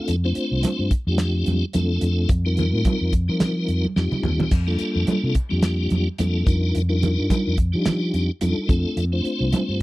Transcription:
Already playing: A3 C4 D4 F4 A4
0.08 F2, closed hi-hat, muted conga
0.24 A3 C4 D4 F4 C5
0.35 muted fingered electric bass stroke, closed hi-hat
0.51 C2
0.63 muted fingered electric bass stroke, closed hi-hat, high conga
0.79 G2
0.91 kick, closed hi-hat
1.07 F2 A3 C4 D4 F4 G4
1.18 snare, closed hi-hat, muted conga
1.46 F2, closed hi-hat, muted conga, high conga
1.73 F2 A3 C4 D4 F4 A4, closed hi-hat, high conga
2.01 F2, closed hi-hat, muted conga
2.29 F2, kick, closed hi-hat, muted conga
2.45 G3 C4 D#4 F4 A#4
2.57 closed hi-hat, low conga
2.73 A2
2.85 kick, closed hi-hat, high conga
3.01 F2
3.13 kick, closed hi-hat
3.28 F3 G3 C4 D#4 F4 A#4
3.40 snare, closed hi-hat, muted conga, low conga
3.68 F2, closed hi-hat, muted conga
3.85 high conga
3.96 F2 G3 C4 D#4 F4 G4, snare, high conga
4.12 muted fingered electric bass stroke, high tom, high conga
4.23 D#2, mid tom, low conga
4.40 floor tom, low conga
4.51 F2, kick, closed hi-hat, crash, muted conga
4.67 G3 A#3 D4 F4 A4
4.79 muted fingered electric bass stroke, closed hi-hat
4.96 F2
5.07 closed hi-hat, high conga
5.24 C3
5.35 kick, closed hi-hat
5.49 F2 G3 A#3 D4 F4 G4
5.63 snare, closed hi-hat, muted conga
5.90 F2, closed hi-hat, muted conga, high conga
6.18 F2 G3 A#3 D4 F4 A4, closed hi-hat, high conga
6.45 F2 G3 D4 D#4 F4 A#4, kick, closed hi-hat, muted conga
6.75 F2, closed hi-hat, muted conga
6.89 G3 D4 D#4 F4 A#4
7.03 closed hi-hat, low conga
7.19 G2
7.30 muted fingered electric bass stroke, kick, closed hi-hat, high conga
7.47 F2
7.57 kick, closed hi-hat
7.72 F3 G3 D4 D#4 F4 G4
7.85 snare, closed hi-hat, muted conga, low conga
8.14 F2, closed hi-hat, muted conga
8.41 F2 G3 D4 D#4 F4 A4, closed hi-hat, high conga
8.68 F2 A3 C4 D4 F4 A4, kick, closed hi-hat
8.97 F2, closed hi-hat, muted conga
9.12 A3 C4 D4 F4 C5
9.24 muted fingered electric bass stroke, closed hi-hat
9.40 C2
9.52 muted fingered electric bass stroke, closed hi-hat, high conga
9.69 G2

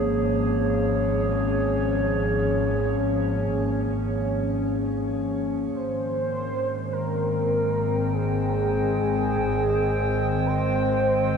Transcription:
Already playing: G#1 F3 A#3 C#4 G#4 C#5
5.74 G#1 D#3 C5
6.26 G#3
6.74 C4
6.93 A#4
7.01 G5
7.54 C5
8.13 G#4
10.46 C5

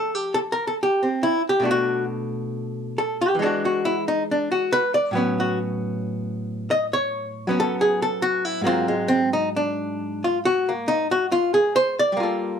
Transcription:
Already playing: F3 A3 G4 A4
0.15 G4
0.34 A4
0.52 A#4
0.67 A4
0.83 G4
1.03 C4
1.23 E4
1.49 G4
1.60 B2 A3 D4
1.65 F#4
1.71 F#4
2.98 A4
3.21 G4
3.35 E3
3.39 G#3 D4 G#4
3.46 F#4
3.65 F#4
3.85 E4
4.08 D#4
4.31 D4
4.52 F#4
4.73 B4
4.94 D5
5.11 A2 F#3
5.15 B3 C#4
5.40 F#4
6.71 D#5
6.93 C#5
7.47 F#3 B3 C#4
7.60 A4
7.81 G#4
8.02 A4
8.22 F#4
8.45 E4
8.61 G#2 F#3 A#3
8.66 C4 F4
8.88 G#3
9.08 C4
9.33 D#4
9.56 D4
10.24 F4
10.45 F#4
10.69 A#3
10.88 D#4
11.11 F#4
11.32 F4
11.54 G#4
11.76 C5
11.99 D5
12.12 G3
12.17 A#3 F4
12.23 A4

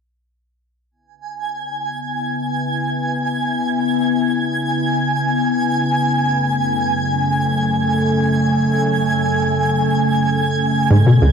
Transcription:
0.91 C#3 B3 E4 G#5
5.91 F#2 A3
10.91 G#2 B3 E4
11.07 B2
11.22 C#2

